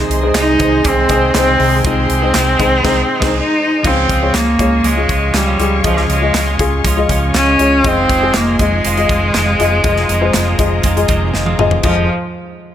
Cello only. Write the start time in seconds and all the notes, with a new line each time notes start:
0.36 D#4
0.88 C4
1.37 C4
1.87 C4
3.38 D#4
3.87 C4
4.35 A#3
4.85 G#3
5.35 G3
5.86 F3
6.10 G#3
7.37 C#4
7.87 C4
8.36 A#3
8.61 G#3
11.85 F3